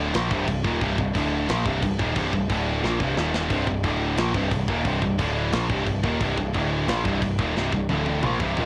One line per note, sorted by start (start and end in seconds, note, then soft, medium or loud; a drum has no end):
0.00 0.12 D1 loud
0.00 0.12 D2 medium
0.00 0.13 A2 medium
0.00 0.14 D3 loud
0.13 0.30 A#1 loud
0.13 0.30 A#2 medium
0.13 0.30 F3 loud
0.13 0.30 A#3 medium
0.13 snare loud
0.13 crash medium
0.31 0.47 C1 medium
0.31 0.47 C2 medium
0.31 0.47 G2 medium
0.31 0.48 C3 loud
0.31 kick loud
0.48 0.63 C1 medium
0.48 0.61 C2 medium
0.48 0.61 G2 medium
0.48 kick medium
0.48 crash medium
0.63 0.80 D#1 medium
0.63 0.80 D#2 loud
0.63 0.80 A#2 loud
0.63 0.80 D#3 loud
0.63 kick loud
0.80 0.97 C1 medium
0.80 0.96 C2 loud
0.80 0.96 G2 medium
0.80 0.97 C3 loud
0.80 kick loud
0.80 crash soft
0.97 1.14 C1 medium
0.97 1.11 C2 medium
0.97 1.11 G2 medium
0.97 kick medium
1.13 1.46 D1 loud
1.13 1.47 D2 medium
1.13 1.48 A2 medium
1.13 1.48 D3 loud
1.13 kick medium
1.13 crash medium
1.48 1.65 A#1 loud
1.48 1.65 A#2 medium
1.48 1.65 F3 medium
1.48 1.66 A#3 loud
1.48 snare loud
1.48 crash medium
1.65 1.82 C1 medium
1.65 1.81 C2 medium
1.65 1.81 G2 loud
1.65 1.82 C3 loud
1.65 kick loud
1.82 1.98 C1 medium
1.82 1.96 C2 medium
1.82 1.96 G2 medium
1.82 kick medium
1.82 crash medium
1.98 2.15 D#1 medium
1.98 2.15 D#2 medium
1.98 2.16 A#2 loud
1.98 2.16 D#3 loud
1.98 kick loud
2.16 2.32 C1 medium
2.16 2.32 C2 loud
2.16 2.32 G2 loud
2.16 2.33 C3 loud
2.16 kick loud
2.16 crash medium
2.33 2.49 C1 medium
2.33 2.47 C2 medium
2.33 2.47 G2 medium
2.33 kick medium
2.50 2.81 D1 loud
2.50 2.83 D2 medium
2.50 2.83 A2 medium
2.50 2.83 D3 loud
2.50 kick loud
2.50 crash medium
2.84 3.00 A#1 loud
2.84 3.00 A#2 medium
2.84 3.00 F3 medium
2.84 3.00 A#3 medium
2.84 snare medium
3.00 3.16 C1 medium
3.00 3.16 C2 medium
3.00 3.17 G2 medium
3.00 3.17 C3 loud
3.00 kick loud
3.17 3.49 D#1 loud
3.17 3.49 D#2 medium
3.17 3.50 A#2 medium
3.17 3.51 D#3 medium
3.17 snare medium
3.34 snare loud
3.50 3.66 C1 medium
3.50 3.65 C2 loud
3.50 3.66 G2 medium
3.50 3.67 C3 loud
3.50 kick medium
3.50 crash medium
3.67 3.83 C1 medium
3.67 3.81 C2 medium
3.67 3.81 G2 medium
3.67 kick medium
3.83 4.16 D1 loud
3.83 4.17 D2 medium
3.83 4.17 A2 medium
3.83 4.18 D3 loud
3.83 kick medium
3.83 crash medium
4.17 4.34 A#1 loud
4.17 4.34 A#2 loud
4.17 4.35 F3 medium
4.17 4.35 A#3 loud
4.17 snare loud
4.17 crash medium
4.34 4.51 C1 loud
4.34 4.51 C2 medium
4.34 4.51 G2 medium
4.34 4.52 C3 loud
4.34 kick loud
4.51 4.67 C1 medium
4.51 4.66 C2 medium
4.51 4.66 G2 medium
4.51 kick medium
4.51 crash medium
4.68 4.84 D#1 medium
4.68 4.85 D#2 loud
4.68 4.85 A#2 loud
4.68 4.86 D#3 loud
4.68 kick loud
4.85 5.01 C1 medium
4.85 5.00 C2 loud
4.85 5.00 G2 loud
4.85 5.02 C3 loud
4.85 kick loud
4.85 crash medium
5.01 5.18 C1 medium
5.01 5.15 C2 medium
5.01 5.15 G2 medium
5.01 kick loud
5.18 5.51 D1 loud
5.18 5.52 D2 medium
5.18 5.52 A2 loud
5.18 5.52 D3 loud
5.18 kick loud
5.18 crash medium
5.52 5.69 A#1 loud
5.52 5.69 A#2 medium
5.52 5.69 F3 loud
5.52 5.69 A#3 loud
5.52 snare loud
5.52 crash medium
5.69 5.86 C1 medium
5.69 5.86 C2 medium
5.69 5.86 G2 medium
5.69 5.86 C3 medium
5.69 kick loud
5.86 6.03 C1 medium
5.86 6.01 C2 medium
5.86 6.01 G2 medium
5.86 kick medium
5.86 crash medium
6.03 6.19 D#1 medium
6.03 6.20 D#2 loud
6.03 6.20 A#2 loud
6.03 6.20 D#3 loud
6.03 kick loud
6.20 6.36 C1 medium
6.20 6.37 C2 loud
6.20 6.37 G2 medium
6.20 6.37 C3 loud
6.20 kick loud
6.20 crash medium
6.37 6.53 C1 medium
6.37 6.51 C2 medium
6.37 6.51 G2 medium
6.37 kick medium
6.54 6.86 D1 loud
6.54 6.87 D2 medium
6.54 6.88 A2 loud
6.54 6.88 D3 loud
6.54 kick medium
6.54 crash medium
6.88 7.04 A#1 loud
6.88 7.04 A#2 medium
6.88 7.05 F3 medium
6.88 7.05 A#3 loud
6.88 snare loud
6.88 crash medium
7.05 7.21 C1 loud
7.05 7.21 C2 medium
7.05 7.22 G2 medium
7.05 7.22 C3 medium
7.05 kick loud
7.22 7.38 C1 medium
7.22 7.36 C2 medium
7.22 7.36 G2 medium
7.22 kick medium
7.22 crash medium
7.39 7.54 D#1 loud
7.39 7.55 D#2 loud
7.39 7.55 A#2 loud
7.39 7.56 D#3 loud
7.39 kick loud
7.56 7.72 C1 medium
7.56 7.72 C2 loud
7.56 7.72 G2 loud
7.56 7.73 C3 loud
7.56 snare medium
7.72 7.88 C1 medium
7.72 7.86 C2 medium
7.72 7.87 G2 medium
7.72 kick loud
7.89 8.21 D1 loud
7.89 8.23 D2 medium
7.89 8.23 A2 loud
7.89 8.23 D3 loud
7.89 high tom medium
8.06 high tom medium
8.23 8.39 A#1 loud
8.23 8.39 A#2 medium
8.23 8.40 F3 medium
8.23 8.40 A#3 medium
8.23 mid tom loud
8.40 8.55 C1 medium
8.40 8.57 C2 medium
8.40 8.57 G2 loud
8.40 8.57 C3 loud
8.40 kick loud
8.57 8.65 D#1 loud
8.57 8.65 D#2 medium
8.57 8.65 A#2 loud
8.57 8.65 D#3 loud
8.57 floor tom medium